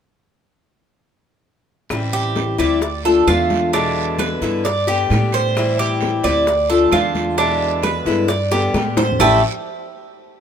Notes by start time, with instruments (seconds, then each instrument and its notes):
1.89 upright bass A1, steel-string acoustic guitar E3 G3 C4 E4, high bongo, high conga, long guiro, claves
2.13 cuban tres G4, high conga
2.35 high bongo, high conga, short guiro
2.58 upright bass D2, steel-string acoustic guitar G3 C4 E4, cuban tres D5, high bongo, short guiro, claves
2.81 muted steel-string acoustic guitar stroke, high bongo, high conga, long guiro
3.05 steel-string acoustic guitar A3 D4 F4, cuban tres A4, high bongo, high conga
3.27 upright bass E2, steel-string acoustic guitar D3 A3 D4 F4, cuban tres F4, high bongo, low bongo, high conga, short guiro, claves
3.50 high bongo, high conga, short guiro
3.73 steel-string acoustic guitar B2 D3 G#3 B3 E4, cuban tres D4, high bongo, high conga, long guiro
3.96 high conga
4.19 cuban tres B4, high bongo, high conga, short guiro, claves
4.41 upright bass G2, steel-string acoustic guitar D3 G#3 B3 E4, high bongo, high conga, short guiro
4.64 cuban tres D5, muted steel-string acoustic guitar stroke, high bongo, high conga, long guiro
4.87 steel-string acoustic guitar D3 G3 B3 G4, cuban tres G4, high bongo, high conga
5.10 upright bass A2, steel-string acoustic guitar D3 G3 B3 G4, high bongo, low bongo, high conga, short guiro, claves
5.32 cuban tres C5, high bongo, short guiro
5.55 steel-string acoustic guitar E3 G3 C4 E4, high bongo, high conga, long guiro, claves
5.79 cuban tres G4, high conga
6.01 high bongo, high conga, short guiro
6.24 upright bass D2, steel-string acoustic guitar G3 C4 E4, cuban tres D5, high bongo, short guiro, claves
6.47 muted steel-string acoustic guitar stroke, high bongo, high conga, long guiro
6.70 steel-string acoustic guitar A3 D4 F4, cuban tres A4, high bongo, high conga
6.92 upright bass E2, steel-string acoustic guitar D3 A3 D4 F4, cuban tres F4, high bongo, low bongo, high conga, short guiro, claves
7.15 high bongo, high conga, short guiro
7.37 steel-string acoustic guitar B2 D3 G#3 B3 E4, cuban tres D4, high bongo, high conga, long guiro
7.61 high conga
7.83 cuban tres B4, high bongo, high conga, short guiro, claves
8.05 upright bass G2, steel-string acoustic guitar D3 G#3 B3 E4, high bongo, high conga, short guiro
8.28 cuban tres D5, muted steel-string acoustic guitar stroke, high bongo, high conga, long guiro
8.51 steel-string acoustic guitar D3 G3 B3 G4, cuban tres G4, high bongo, high conga
8.74 upright bass A2, steel-string acoustic guitar D3 G3 B3 G4, high bongo, high conga, short guiro, claves
8.97 cuban tres C5, low bongo, high conga, short guiro
9.12 low conga
9.19 upright bass A1, steel-string acoustic guitar A2 E3 G3 C4 E4, cuban tres A3 E4 G4, low bongo, low conga, long guiro, claves